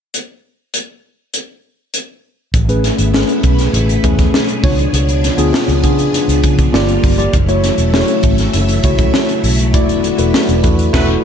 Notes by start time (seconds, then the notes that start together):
0.14 closed hi-hat
0.74 closed hi-hat
1.34 closed hi-hat
1.94 closed hi-hat
2.53 A1 B2 A3 B3 E4 G#4, kick, closed hi-hat, muted conga
2.68 A3 C#4 G#4 B4, closed hi-hat
2.84 snare, closed hi-hat, muted conga
2.98 G#1, closed hi-hat
3.13 A3 C#4 G#4 B4, snare, high conga
3.29 closed hi-hat
3.43 B1, kick, closed hi-hat
3.59 snare, closed hi-hat
3.73 A1, closed hi-hat, muted conga, low conga
3.89 closed hi-hat
4.03 E2 A3 C#4 G#4 B4, kick, closed hi-hat, low conga
4.19 kick, snare, closed hi-hat
4.34 snare, high conga
4.49 closed hi-hat
4.63 C#2 F3 B3 D4 F4 C#5, kick, open hi-hat
4.79 closed hi-hat, high conga
4.93 C#2, closed hi-hat, muted conga
5.09 closed hi-hat
5.24 snare, closed hi-hat, muted conga
5.37 D2 B3 D4 F4 G#4, closed hi-hat
5.53 snare, high conga
5.68 C#2, closed hi-hat
5.83 C#3 B3 D4 F4 G#4, kick, closed hi-hat
5.99 closed hi-hat
6.13 closed hi-hat, muted conga, low conga
6.28 C#2, closed hi-hat
6.44 C#3, kick, closed hi-hat
6.59 kick, closed hi-hat
6.72 G1 D3 G3 A#3 F4 G4 D5, snare, high conga
6.88 closed hi-hat
7.04 G1, kick, open hi-hat
7.17 A#3 F4 G4 D5, closed hi-hat, high conga
7.33 F#1 C#3 E3 F#3 A3 E4, kick, closed hi-hat, muted conga
7.47 A3 E4 F#4 C#5, closed hi-hat
7.64 snare, closed hi-hat, muted conga
7.78 E1, closed hi-hat
7.93 A3 E4 F#4 C#5, snare, high conga
8.08 closed hi-hat
8.23 G#1, kick, closed hi-hat
8.38 snare, closed hi-hat
8.54 F#1, closed hi-hat, muted conga, low conga
8.69 closed hi-hat
8.84 C#2 A3 E4 F#4 C#5, kick, closed hi-hat, low conga
8.98 kick, closed hi-hat
9.14 snare, high conga
9.29 closed hi-hat
9.43 B1, open hi-hat
9.59 closed hi-hat, high conga
9.73 E1 D3 A3 B3 E4 F#4 D5, kick, closed hi-hat, muted conga
9.89 closed hi-hat
10.04 closed hi-hat, muted conga
10.18 E1 A3 E4 F#4 B4, closed hi-hat
10.34 snare, high conga
10.49 E1, closed hi-hat
10.63 E2 A3 E4 F#4 A4, kick, closed hi-hat
10.79 closed hi-hat
10.93 E1 F#3 A3 D4 E4 F#4 A4 B4, kick, snare, crash